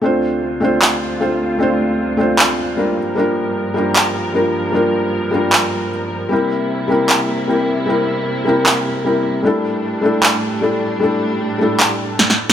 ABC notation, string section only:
X:1
M:4/4
L:1/8
Q:"Swing 16ths" 1/4=153
K:Dm
V:1 name="String section" clef=bass
[D,,C,F]8- | [D,,C,F]6- [D,,C,F] [G,,F,B]- | [G,,F,B]8- | [G,,F,B]8 |
[C,B,E]8- | [C,B,E]8 | [A,,G,D]8- | [A,,G,D]8 |]